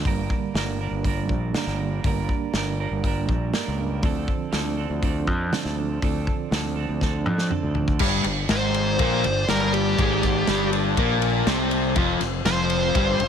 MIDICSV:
0, 0, Header, 1, 7, 480
1, 0, Start_track
1, 0, Key_signature, -2, "minor"
1, 0, Tempo, 496278
1, 55, Time_signature, 4, 2, 24, 8
1, 12845, End_track
2, 0, Start_track
2, 0, Title_t, "Lead electric guitar"
2, 0, Program_c, 0, 29
2, 8230, Note_on_c, 0, 72, 93
2, 9157, Note_off_c, 0, 72, 0
2, 9184, Note_on_c, 0, 70, 74
2, 9286, Note_off_c, 0, 70, 0
2, 9298, Note_on_c, 0, 70, 77
2, 9414, Note_off_c, 0, 70, 0
2, 9414, Note_on_c, 0, 67, 89
2, 10347, Note_off_c, 0, 67, 0
2, 12047, Note_on_c, 0, 72, 95
2, 12845, Note_off_c, 0, 72, 0
2, 12845, End_track
3, 0, Start_track
3, 0, Title_t, "String section"
3, 0, Program_c, 1, 48
3, 7742, Note_on_c, 1, 74, 88
3, 7743, Note_on_c, 1, 58, 72
3, 7745, Note_on_c, 1, 67, 71
3, 7747, Note_on_c, 1, 50, 81
3, 9642, Note_off_c, 1, 67, 0
3, 9674, Note_on_c, 1, 81, 77
3, 11537, Note_off_c, 1, 58, 0
3, 11537, Note_off_c, 1, 74, 0
3, 11539, Note_off_c, 1, 50, 0
3, 11564, Note_off_c, 1, 81, 0
3, 11571, Note_on_c, 1, 65, 78
3, 11572, Note_on_c, 1, 72, 93
3, 11579, Note_on_c, 1, 53, 74
3, 11581, Note_on_c, 1, 48, 85
3, 12845, Note_off_c, 1, 48, 0
3, 12845, Note_off_c, 1, 53, 0
3, 12845, Note_off_c, 1, 65, 0
3, 12845, Note_off_c, 1, 72, 0
3, 12845, End_track
4, 0, Start_track
4, 0, Title_t, "Clean electric guitar"
4, 0, Program_c, 2, 27
4, 46, Note_on_c, 2, 43, 84
4, 61, Note_on_c, 2, 55, 85
4, 62, Note_on_c, 2, 50, 85
4, 69, Note_on_c, 2, 58, 93
4, 71, Note_on_c, 2, 62, 86
4, 73, Note_on_c, 2, 70, 95
4, 524, Note_off_c, 2, 55, 0
4, 528, Note_on_c, 2, 55, 68
4, 539, Note_off_c, 2, 58, 0
4, 543, Note_on_c, 2, 58, 67
4, 546, Note_off_c, 2, 62, 0
4, 550, Note_on_c, 2, 62, 69
4, 555, Note_off_c, 2, 70, 0
4, 559, Note_on_c, 2, 70, 73
4, 778, Note_off_c, 2, 70, 0
4, 781, Note_off_c, 2, 50, 0
4, 781, Note_on_c, 2, 70, 67
4, 786, Note_off_c, 2, 62, 0
4, 789, Note_off_c, 2, 58, 0
4, 790, Note_on_c, 2, 62, 60
4, 793, Note_on_c, 2, 58, 60
4, 796, Note_off_c, 2, 55, 0
4, 800, Note_on_c, 2, 55, 52
4, 1002, Note_off_c, 2, 55, 0
4, 1014, Note_off_c, 2, 58, 0
4, 1014, Note_on_c, 2, 55, 69
4, 1023, Note_off_c, 2, 62, 0
4, 1026, Note_on_c, 2, 58, 63
4, 1027, Note_off_c, 2, 70, 0
4, 1027, Note_on_c, 2, 62, 69
4, 1039, Note_on_c, 2, 70, 73
4, 1496, Note_off_c, 2, 43, 0
4, 1500, Note_on_c, 2, 43, 78
4, 1501, Note_off_c, 2, 55, 0
4, 1506, Note_off_c, 2, 58, 0
4, 1506, Note_on_c, 2, 50, 89
4, 1512, Note_on_c, 2, 55, 88
4, 1515, Note_off_c, 2, 70, 0
4, 1518, Note_off_c, 2, 62, 0
4, 1518, Note_on_c, 2, 58, 96
4, 1522, Note_on_c, 2, 62, 96
4, 1527, Note_on_c, 2, 70, 97
4, 1729, Note_off_c, 2, 70, 0
4, 1740, Note_on_c, 2, 70, 61
4, 1747, Note_off_c, 2, 58, 0
4, 1747, Note_off_c, 2, 62, 0
4, 1750, Note_off_c, 2, 55, 0
4, 1750, Note_on_c, 2, 62, 59
4, 1758, Note_on_c, 2, 58, 52
4, 1761, Note_on_c, 2, 55, 55
4, 1968, Note_off_c, 2, 43, 0
4, 1972, Note_off_c, 2, 50, 0
4, 1976, Note_off_c, 2, 55, 0
4, 1979, Note_on_c, 2, 43, 79
4, 1984, Note_on_c, 2, 50, 80
4, 1985, Note_off_c, 2, 58, 0
4, 1988, Note_on_c, 2, 55, 88
4, 1993, Note_off_c, 2, 70, 0
4, 1994, Note_off_c, 2, 62, 0
4, 1996, Note_on_c, 2, 58, 86
4, 1998, Note_on_c, 2, 62, 85
4, 2005, Note_on_c, 2, 70, 97
4, 2451, Note_off_c, 2, 55, 0
4, 2463, Note_on_c, 2, 55, 63
4, 2467, Note_off_c, 2, 58, 0
4, 2479, Note_on_c, 2, 58, 66
4, 2480, Note_off_c, 2, 70, 0
4, 2482, Note_off_c, 2, 62, 0
4, 2486, Note_on_c, 2, 62, 68
4, 2491, Note_on_c, 2, 70, 77
4, 2698, Note_off_c, 2, 70, 0
4, 2701, Note_off_c, 2, 43, 0
4, 2703, Note_off_c, 2, 50, 0
4, 2706, Note_off_c, 2, 58, 0
4, 2709, Note_on_c, 2, 70, 66
4, 2711, Note_off_c, 2, 62, 0
4, 2715, Note_on_c, 2, 62, 66
4, 2717, Note_off_c, 2, 55, 0
4, 2718, Note_on_c, 2, 58, 58
4, 2729, Note_on_c, 2, 55, 56
4, 2928, Note_off_c, 2, 55, 0
4, 2940, Note_on_c, 2, 55, 69
4, 2943, Note_off_c, 2, 58, 0
4, 2954, Note_on_c, 2, 58, 67
4, 2960, Note_off_c, 2, 70, 0
4, 2962, Note_off_c, 2, 62, 0
4, 2966, Note_on_c, 2, 62, 76
4, 2971, Note_on_c, 2, 70, 78
4, 3418, Note_off_c, 2, 55, 0
4, 3418, Note_on_c, 2, 43, 85
4, 3423, Note_off_c, 2, 58, 0
4, 3430, Note_on_c, 2, 55, 89
4, 3432, Note_off_c, 2, 62, 0
4, 3432, Note_off_c, 2, 70, 0
4, 3435, Note_on_c, 2, 58, 89
4, 3436, Note_on_c, 2, 62, 94
4, 3443, Note_on_c, 2, 70, 87
4, 3651, Note_off_c, 2, 70, 0
4, 3662, Note_on_c, 2, 70, 66
4, 3672, Note_off_c, 2, 58, 0
4, 3673, Note_off_c, 2, 62, 0
4, 3675, Note_off_c, 2, 55, 0
4, 3677, Note_on_c, 2, 62, 58
4, 3683, Note_on_c, 2, 58, 59
4, 3687, Note_on_c, 2, 55, 54
4, 3887, Note_off_c, 2, 43, 0
4, 3889, Note_off_c, 2, 70, 0
4, 3899, Note_off_c, 2, 58, 0
4, 3899, Note_on_c, 2, 50, 84
4, 3901, Note_off_c, 2, 55, 0
4, 3909, Note_on_c, 2, 53, 89
4, 3915, Note_on_c, 2, 60, 96
4, 3916, Note_off_c, 2, 62, 0
4, 3920, Note_on_c, 2, 62, 87
4, 3926, Note_on_c, 2, 69, 93
4, 4363, Note_off_c, 2, 53, 0
4, 4366, Note_on_c, 2, 53, 71
4, 4376, Note_off_c, 2, 60, 0
4, 4379, Note_off_c, 2, 62, 0
4, 4380, Note_on_c, 2, 60, 67
4, 4383, Note_on_c, 2, 62, 73
4, 4393, Note_off_c, 2, 69, 0
4, 4397, Note_on_c, 2, 69, 78
4, 4615, Note_off_c, 2, 69, 0
4, 4618, Note_on_c, 2, 69, 76
4, 4632, Note_off_c, 2, 62, 0
4, 4636, Note_on_c, 2, 62, 59
4, 4638, Note_off_c, 2, 60, 0
4, 4642, Note_on_c, 2, 60, 56
4, 4671, Note_off_c, 2, 50, 0
4, 4854, Note_off_c, 2, 53, 0
4, 4856, Note_off_c, 2, 60, 0
4, 4858, Note_on_c, 2, 53, 72
4, 4867, Note_on_c, 2, 60, 74
4, 4870, Note_off_c, 2, 69, 0
4, 4874, Note_off_c, 2, 62, 0
4, 4877, Note_on_c, 2, 62, 67
4, 4881, Note_on_c, 2, 69, 77
4, 5335, Note_on_c, 2, 50, 91
4, 5336, Note_off_c, 2, 53, 0
4, 5339, Note_off_c, 2, 60, 0
4, 5347, Note_on_c, 2, 53, 88
4, 5351, Note_off_c, 2, 69, 0
4, 5351, Note_on_c, 2, 60, 94
4, 5352, Note_off_c, 2, 62, 0
4, 5356, Note_on_c, 2, 62, 89
4, 5363, Note_on_c, 2, 69, 105
4, 5580, Note_off_c, 2, 69, 0
4, 5592, Note_on_c, 2, 69, 65
4, 5602, Note_off_c, 2, 62, 0
4, 5606, Note_off_c, 2, 60, 0
4, 5606, Note_on_c, 2, 62, 61
4, 5618, Note_on_c, 2, 60, 57
4, 5813, Note_off_c, 2, 50, 0
4, 5821, Note_off_c, 2, 53, 0
4, 5824, Note_on_c, 2, 50, 81
4, 5825, Note_off_c, 2, 60, 0
4, 5831, Note_off_c, 2, 62, 0
4, 5832, Note_on_c, 2, 53, 92
4, 5836, Note_off_c, 2, 69, 0
4, 5837, Note_on_c, 2, 60, 83
4, 5842, Note_on_c, 2, 62, 87
4, 5847, Note_on_c, 2, 69, 98
4, 6299, Note_off_c, 2, 53, 0
4, 6305, Note_off_c, 2, 60, 0
4, 6311, Note_on_c, 2, 53, 68
4, 6315, Note_off_c, 2, 62, 0
4, 6317, Note_on_c, 2, 60, 66
4, 6325, Note_off_c, 2, 69, 0
4, 6327, Note_on_c, 2, 62, 69
4, 6337, Note_on_c, 2, 69, 73
4, 6525, Note_off_c, 2, 69, 0
4, 6536, Note_off_c, 2, 62, 0
4, 6537, Note_on_c, 2, 69, 68
4, 6545, Note_off_c, 2, 50, 0
4, 6548, Note_on_c, 2, 62, 60
4, 6550, Note_off_c, 2, 60, 0
4, 6562, Note_on_c, 2, 60, 57
4, 6761, Note_off_c, 2, 53, 0
4, 6767, Note_off_c, 2, 60, 0
4, 6773, Note_on_c, 2, 53, 67
4, 6778, Note_on_c, 2, 60, 68
4, 6781, Note_off_c, 2, 62, 0
4, 6786, Note_off_c, 2, 69, 0
4, 6793, Note_on_c, 2, 62, 74
4, 6797, Note_on_c, 2, 69, 76
4, 7243, Note_off_c, 2, 53, 0
4, 7248, Note_off_c, 2, 60, 0
4, 7248, Note_on_c, 2, 50, 89
4, 7255, Note_on_c, 2, 53, 88
4, 7259, Note_off_c, 2, 62, 0
4, 7259, Note_on_c, 2, 60, 97
4, 7260, Note_off_c, 2, 69, 0
4, 7271, Note_on_c, 2, 62, 93
4, 7271, Note_on_c, 2, 69, 99
4, 7475, Note_off_c, 2, 69, 0
4, 7487, Note_on_c, 2, 69, 60
4, 7491, Note_off_c, 2, 62, 0
4, 7497, Note_off_c, 2, 60, 0
4, 7503, Note_on_c, 2, 62, 54
4, 7509, Note_on_c, 2, 60, 50
4, 7722, Note_off_c, 2, 50, 0
4, 7722, Note_off_c, 2, 69, 0
4, 7726, Note_off_c, 2, 53, 0
4, 7730, Note_off_c, 2, 62, 0
4, 7732, Note_off_c, 2, 60, 0
4, 12845, End_track
5, 0, Start_track
5, 0, Title_t, "Overdriven electric guitar"
5, 0, Program_c, 3, 29
5, 7736, Note_on_c, 3, 43, 97
5, 7744, Note_on_c, 3, 55, 104
5, 7963, Note_off_c, 3, 43, 0
5, 7975, Note_on_c, 3, 43, 72
5, 7977, Note_off_c, 3, 55, 0
5, 8172, Note_off_c, 3, 43, 0
5, 8214, Note_on_c, 3, 44, 88
5, 8223, Note_on_c, 3, 56, 85
5, 8691, Note_off_c, 3, 44, 0
5, 8692, Note_on_c, 3, 46, 83
5, 8696, Note_off_c, 3, 56, 0
5, 8698, Note_on_c, 3, 58, 93
5, 8930, Note_off_c, 3, 46, 0
5, 8933, Note_off_c, 3, 58, 0
5, 8940, Note_on_c, 3, 43, 69
5, 9133, Note_off_c, 3, 43, 0
5, 9180, Note_on_c, 3, 43, 94
5, 9180, Note_on_c, 3, 55, 89
5, 9653, Note_off_c, 3, 43, 0
5, 9653, Note_off_c, 3, 55, 0
5, 9661, Note_on_c, 3, 44, 90
5, 9670, Note_on_c, 3, 56, 99
5, 10133, Note_off_c, 3, 44, 0
5, 10137, Note_off_c, 3, 56, 0
5, 10148, Note_on_c, 3, 43, 88
5, 10150, Note_on_c, 3, 55, 92
5, 10616, Note_off_c, 3, 43, 0
5, 10617, Note_off_c, 3, 55, 0
5, 10620, Note_on_c, 3, 46, 94
5, 10626, Note_on_c, 3, 58, 103
5, 11088, Note_off_c, 3, 46, 0
5, 11092, Note_on_c, 3, 48, 98
5, 11094, Note_off_c, 3, 58, 0
5, 11102, Note_on_c, 3, 60, 93
5, 11564, Note_on_c, 3, 41, 95
5, 11566, Note_off_c, 3, 48, 0
5, 11571, Note_off_c, 3, 60, 0
5, 11571, Note_on_c, 3, 53, 110
5, 11800, Note_off_c, 3, 41, 0
5, 11806, Note_off_c, 3, 53, 0
5, 11812, Note_on_c, 3, 41, 72
5, 12005, Note_off_c, 3, 41, 0
5, 12048, Note_on_c, 3, 41, 90
5, 12059, Note_on_c, 3, 53, 100
5, 12523, Note_off_c, 3, 41, 0
5, 12529, Note_off_c, 3, 53, 0
5, 12532, Note_on_c, 3, 43, 93
5, 12540, Note_on_c, 3, 55, 108
5, 12765, Note_off_c, 3, 43, 0
5, 12769, Note_off_c, 3, 55, 0
5, 12769, Note_on_c, 3, 41, 75
5, 12845, Note_off_c, 3, 41, 0
5, 12845, End_track
6, 0, Start_track
6, 0, Title_t, "Fingered electric bass"
6, 0, Program_c, 4, 33
6, 49, Note_on_c, 4, 31, 87
6, 271, Note_off_c, 4, 31, 0
6, 526, Note_on_c, 4, 31, 82
6, 860, Note_off_c, 4, 31, 0
6, 879, Note_on_c, 4, 31, 74
6, 1251, Note_off_c, 4, 31, 0
6, 1251, Note_on_c, 4, 34, 86
6, 1474, Note_off_c, 4, 34, 0
6, 1614, Note_on_c, 4, 31, 79
6, 1945, Note_off_c, 4, 31, 0
6, 1972, Note_on_c, 4, 31, 89
6, 2195, Note_off_c, 4, 31, 0
6, 2452, Note_on_c, 4, 31, 86
6, 2785, Note_off_c, 4, 31, 0
6, 2816, Note_on_c, 4, 31, 75
6, 3182, Note_off_c, 4, 31, 0
6, 3182, Note_on_c, 4, 34, 90
6, 3402, Note_off_c, 4, 34, 0
6, 3557, Note_on_c, 4, 37, 77
6, 3880, Note_off_c, 4, 37, 0
6, 3897, Note_on_c, 4, 38, 88
6, 4119, Note_off_c, 4, 38, 0
6, 4379, Note_on_c, 4, 38, 83
6, 4710, Note_off_c, 4, 38, 0
6, 4738, Note_on_c, 4, 38, 72
6, 5099, Note_off_c, 4, 38, 0
6, 5099, Note_on_c, 4, 41, 91
6, 5321, Note_off_c, 4, 41, 0
6, 5464, Note_on_c, 4, 38, 79
6, 5793, Note_off_c, 4, 38, 0
6, 5828, Note_on_c, 4, 38, 92
6, 6046, Note_off_c, 4, 38, 0
6, 6299, Note_on_c, 4, 38, 88
6, 6630, Note_off_c, 4, 38, 0
6, 6663, Note_on_c, 4, 38, 79
6, 7018, Note_off_c, 4, 38, 0
6, 7018, Note_on_c, 4, 41, 91
6, 7240, Note_off_c, 4, 41, 0
6, 7381, Note_on_c, 4, 38, 73
6, 7711, Note_off_c, 4, 38, 0
6, 7738, Note_on_c, 4, 31, 99
6, 7965, Note_off_c, 4, 31, 0
6, 7970, Note_on_c, 4, 31, 81
6, 8200, Note_off_c, 4, 31, 0
6, 8214, Note_on_c, 4, 32, 98
6, 8665, Note_off_c, 4, 32, 0
6, 8699, Note_on_c, 4, 34, 94
6, 8924, Note_off_c, 4, 34, 0
6, 8941, Note_on_c, 4, 31, 82
6, 9165, Note_off_c, 4, 31, 0
6, 9174, Note_on_c, 4, 31, 93
6, 9623, Note_off_c, 4, 31, 0
6, 9657, Note_on_c, 4, 32, 95
6, 10104, Note_off_c, 4, 32, 0
6, 10136, Note_on_c, 4, 31, 94
6, 10583, Note_off_c, 4, 31, 0
6, 10614, Note_on_c, 4, 34, 94
6, 11062, Note_off_c, 4, 34, 0
6, 11090, Note_on_c, 4, 36, 98
6, 11539, Note_off_c, 4, 36, 0
6, 11570, Note_on_c, 4, 29, 100
6, 11796, Note_off_c, 4, 29, 0
6, 11803, Note_on_c, 4, 29, 81
6, 12032, Note_off_c, 4, 29, 0
6, 12043, Note_on_c, 4, 29, 103
6, 12494, Note_off_c, 4, 29, 0
6, 12526, Note_on_c, 4, 31, 97
6, 12753, Note_off_c, 4, 31, 0
6, 12766, Note_on_c, 4, 29, 89
6, 12845, Note_off_c, 4, 29, 0
6, 12845, End_track
7, 0, Start_track
7, 0, Title_t, "Drums"
7, 50, Note_on_c, 9, 36, 99
7, 53, Note_on_c, 9, 46, 49
7, 146, Note_off_c, 9, 36, 0
7, 150, Note_off_c, 9, 46, 0
7, 291, Note_on_c, 9, 36, 75
7, 387, Note_off_c, 9, 36, 0
7, 535, Note_on_c, 9, 46, 51
7, 536, Note_on_c, 9, 38, 101
7, 632, Note_off_c, 9, 46, 0
7, 633, Note_off_c, 9, 38, 0
7, 1011, Note_on_c, 9, 36, 74
7, 1013, Note_on_c, 9, 46, 47
7, 1107, Note_off_c, 9, 36, 0
7, 1110, Note_off_c, 9, 46, 0
7, 1251, Note_on_c, 9, 36, 77
7, 1347, Note_off_c, 9, 36, 0
7, 1493, Note_on_c, 9, 46, 46
7, 1494, Note_on_c, 9, 38, 101
7, 1590, Note_off_c, 9, 46, 0
7, 1591, Note_off_c, 9, 38, 0
7, 1618, Note_on_c, 9, 38, 32
7, 1715, Note_off_c, 9, 38, 0
7, 1975, Note_on_c, 9, 36, 104
7, 1979, Note_on_c, 9, 46, 47
7, 2072, Note_off_c, 9, 36, 0
7, 2075, Note_off_c, 9, 46, 0
7, 2214, Note_on_c, 9, 36, 73
7, 2311, Note_off_c, 9, 36, 0
7, 2452, Note_on_c, 9, 46, 46
7, 2453, Note_on_c, 9, 38, 101
7, 2549, Note_off_c, 9, 46, 0
7, 2550, Note_off_c, 9, 38, 0
7, 2939, Note_on_c, 9, 36, 77
7, 2942, Note_on_c, 9, 46, 44
7, 3035, Note_off_c, 9, 36, 0
7, 3039, Note_off_c, 9, 46, 0
7, 3179, Note_on_c, 9, 36, 79
7, 3276, Note_off_c, 9, 36, 0
7, 3419, Note_on_c, 9, 46, 46
7, 3420, Note_on_c, 9, 38, 98
7, 3516, Note_off_c, 9, 46, 0
7, 3517, Note_off_c, 9, 38, 0
7, 3895, Note_on_c, 9, 46, 48
7, 3899, Note_on_c, 9, 36, 106
7, 3992, Note_off_c, 9, 46, 0
7, 3996, Note_off_c, 9, 36, 0
7, 4139, Note_on_c, 9, 36, 75
7, 4235, Note_off_c, 9, 36, 0
7, 4377, Note_on_c, 9, 46, 50
7, 4378, Note_on_c, 9, 38, 98
7, 4474, Note_off_c, 9, 46, 0
7, 4475, Note_off_c, 9, 38, 0
7, 4861, Note_on_c, 9, 36, 81
7, 4861, Note_on_c, 9, 46, 49
7, 4958, Note_off_c, 9, 36, 0
7, 4958, Note_off_c, 9, 46, 0
7, 5101, Note_on_c, 9, 36, 82
7, 5198, Note_off_c, 9, 36, 0
7, 5345, Note_on_c, 9, 46, 46
7, 5346, Note_on_c, 9, 38, 103
7, 5442, Note_off_c, 9, 46, 0
7, 5443, Note_off_c, 9, 38, 0
7, 5473, Note_on_c, 9, 38, 32
7, 5569, Note_off_c, 9, 38, 0
7, 5827, Note_on_c, 9, 36, 97
7, 5828, Note_on_c, 9, 46, 47
7, 5923, Note_off_c, 9, 36, 0
7, 5924, Note_off_c, 9, 46, 0
7, 6066, Note_on_c, 9, 36, 76
7, 6163, Note_off_c, 9, 36, 0
7, 6308, Note_on_c, 9, 46, 48
7, 6309, Note_on_c, 9, 38, 104
7, 6405, Note_off_c, 9, 46, 0
7, 6406, Note_off_c, 9, 38, 0
7, 6783, Note_on_c, 9, 36, 76
7, 6785, Note_on_c, 9, 38, 52
7, 6880, Note_off_c, 9, 36, 0
7, 6882, Note_off_c, 9, 38, 0
7, 7024, Note_on_c, 9, 47, 62
7, 7121, Note_off_c, 9, 47, 0
7, 7141, Note_on_c, 9, 38, 58
7, 7238, Note_off_c, 9, 38, 0
7, 7261, Note_on_c, 9, 45, 75
7, 7358, Note_off_c, 9, 45, 0
7, 7494, Note_on_c, 9, 43, 78
7, 7591, Note_off_c, 9, 43, 0
7, 7619, Note_on_c, 9, 36, 80
7, 7716, Note_off_c, 9, 36, 0
7, 7730, Note_on_c, 9, 49, 119
7, 7738, Note_on_c, 9, 36, 115
7, 7827, Note_off_c, 9, 49, 0
7, 7835, Note_off_c, 9, 36, 0
7, 7972, Note_on_c, 9, 51, 74
7, 8069, Note_off_c, 9, 51, 0
7, 8210, Note_on_c, 9, 51, 104
7, 8211, Note_on_c, 9, 38, 108
7, 8307, Note_off_c, 9, 51, 0
7, 8308, Note_off_c, 9, 38, 0
7, 8457, Note_on_c, 9, 51, 77
7, 8554, Note_off_c, 9, 51, 0
7, 8695, Note_on_c, 9, 51, 104
7, 8699, Note_on_c, 9, 36, 112
7, 8792, Note_off_c, 9, 51, 0
7, 8795, Note_off_c, 9, 36, 0
7, 8938, Note_on_c, 9, 51, 74
7, 9035, Note_off_c, 9, 51, 0
7, 9174, Note_on_c, 9, 51, 96
7, 9175, Note_on_c, 9, 38, 114
7, 9270, Note_off_c, 9, 51, 0
7, 9271, Note_off_c, 9, 38, 0
7, 9418, Note_on_c, 9, 51, 68
7, 9514, Note_off_c, 9, 51, 0
7, 9658, Note_on_c, 9, 36, 110
7, 9659, Note_on_c, 9, 51, 101
7, 9755, Note_off_c, 9, 36, 0
7, 9756, Note_off_c, 9, 51, 0
7, 9896, Note_on_c, 9, 36, 80
7, 9896, Note_on_c, 9, 51, 69
7, 9897, Note_on_c, 9, 38, 31
7, 9993, Note_off_c, 9, 36, 0
7, 9993, Note_off_c, 9, 51, 0
7, 9994, Note_off_c, 9, 38, 0
7, 10129, Note_on_c, 9, 51, 94
7, 10130, Note_on_c, 9, 38, 116
7, 10226, Note_off_c, 9, 51, 0
7, 10227, Note_off_c, 9, 38, 0
7, 10376, Note_on_c, 9, 51, 69
7, 10472, Note_off_c, 9, 51, 0
7, 10613, Note_on_c, 9, 51, 91
7, 10614, Note_on_c, 9, 36, 108
7, 10710, Note_off_c, 9, 36, 0
7, 10710, Note_off_c, 9, 51, 0
7, 10850, Note_on_c, 9, 51, 70
7, 10947, Note_off_c, 9, 51, 0
7, 11092, Note_on_c, 9, 51, 97
7, 11093, Note_on_c, 9, 38, 112
7, 11188, Note_off_c, 9, 51, 0
7, 11189, Note_off_c, 9, 38, 0
7, 11327, Note_on_c, 9, 51, 68
7, 11424, Note_off_c, 9, 51, 0
7, 11564, Note_on_c, 9, 51, 99
7, 11568, Note_on_c, 9, 36, 113
7, 11661, Note_off_c, 9, 51, 0
7, 11665, Note_off_c, 9, 36, 0
7, 11807, Note_on_c, 9, 51, 74
7, 11808, Note_on_c, 9, 38, 31
7, 11904, Note_off_c, 9, 38, 0
7, 11904, Note_off_c, 9, 51, 0
7, 12046, Note_on_c, 9, 51, 100
7, 12047, Note_on_c, 9, 38, 117
7, 12143, Note_off_c, 9, 51, 0
7, 12144, Note_off_c, 9, 38, 0
7, 12281, Note_on_c, 9, 51, 80
7, 12378, Note_off_c, 9, 51, 0
7, 12525, Note_on_c, 9, 36, 115
7, 12525, Note_on_c, 9, 51, 102
7, 12622, Note_off_c, 9, 36, 0
7, 12622, Note_off_c, 9, 51, 0
7, 12765, Note_on_c, 9, 51, 73
7, 12845, Note_off_c, 9, 51, 0
7, 12845, End_track
0, 0, End_of_file